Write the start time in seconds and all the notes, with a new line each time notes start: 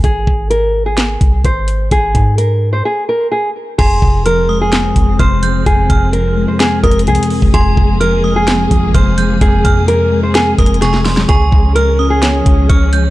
0.04 G#1 G#4, kick, closed hi-hat
0.27 G#1, kick
0.50 A#4, closed hi-hat
0.86 G#4
0.97 snare, clap, closed hi-hat
1.21 C2, kick, closed hi-hat
1.45 G#1 C5, kick, closed hi-hat
1.68 closed hi-hat
1.91 G#1 G#4, kick, closed hi-hat
2.15 G#2, kick, closed hi-hat
2.38 A#4, closed hi-hat
2.73 C5
2.85 G#4
3.09 A#4
3.32 G#4
3.78 F1 F2 F3 G#3 C4 G#4 C6, kick, closed hi-hat, crash
4.02 F1 C3, kick
4.26 F3 A#4 F6, closed hi-hat
4.49 G#3 D#6
4.61 G#4
4.72 C4, snare, clap, closed hi-hat
4.96 F1 F2, kick, closed hi-hat
5.19 F1 C3 C5 F6, kick, closed hi-hat
5.43 F3 G6, closed hi-hat
5.66 F1 F2 G#4, kick, closed hi-hat
5.90 F1 C3 F6, kick, closed hi-hat
6.13 F3 A#4, closed hi-hat
6.37 G#3
6.48 C5
6.60 C4 G#4, snare, clap, closed hi-hat
6.83 F1 F2 A#4 D#6, kick, closed hi-hat
6.91 closed hi-hat
6.99 closed hi-hat
7.07 C2 C3 G#4, closed hi-hat
7.15 closed hi-hat
7.23 closed hi-hat
7.30 F3, open hi-hat
7.42 F1, kick
7.54 F1 F2 A#3 G#4 C6, kick, closed hi-hat
7.77 F1 C3, kick
8.00 F3 A#4 F6, closed hi-hat
8.24 G#3 D#6
8.36 G#4
8.47 C4, snare, clap, closed hi-hat
8.71 G#1 F2, kick, closed hi-hat
8.94 F1 C3 C5 F6, kick, closed hi-hat
9.18 F3 G6, closed hi-hat
9.41 F1 F2 G#4, kick, closed hi-hat
9.65 F2 C3 F6, kick, closed hi-hat
9.88 F3 A#4, closed hi-hat
10.12 G#3
10.23 C5
10.35 C4 G#4, snare, clap, closed hi-hat
10.58 F1 F2 A#4 D#6, kick, closed hi-hat
10.66 closed hi-hat
10.74 closed hi-hat
10.81 C3 G#4 C#6, snare, closed hi-hat
10.94 snare
11.05 F3 C6, snare, open hi-hat
11.17 snare
11.29 C#2 C#3 F3 C#4 G#4 C#6, kick, closed hi-hat
11.52 C#2 F3, kick
11.75 G#3 A#4 F6, closed hi-hat
11.99 C#4 D#6
12.10 G#4
12.22 C#5, snare, clap, closed hi-hat
12.46 C#2 C#3, kick, closed hi-hat
12.69 C#2 F3 C#5 F6, kick, closed hi-hat
12.93 G#3 G6, closed hi-hat